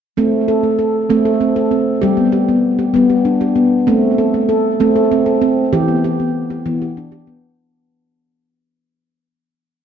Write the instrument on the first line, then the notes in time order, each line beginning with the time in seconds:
handpan
0.17 A3 C4
0.48 A4
0.63 A3
0.79 A4
1.10 A3 C4
1.25 A4
1.41 C4
1.56 A4
1.71 C4
2.02 G3 G4
2.17 B3
2.32 G4
2.49 B3
2.79 G4
2.94 G3 B3
3.10 G4
3.25 D4
3.41 G4
3.56 B3
3.87 A3 C4
4.18 A4
4.34 A3
4.49 A4
4.80 A3 C4
4.96 A4
5.12 C4
5.26 A4
5.42 C4
5.73 E3 G4
5.88 B3
6.04 G4
6.20 B3
6.50 G4
6.66 E3 B3
6.82 G4
6.97 D4
7.12 G4
7.27 B3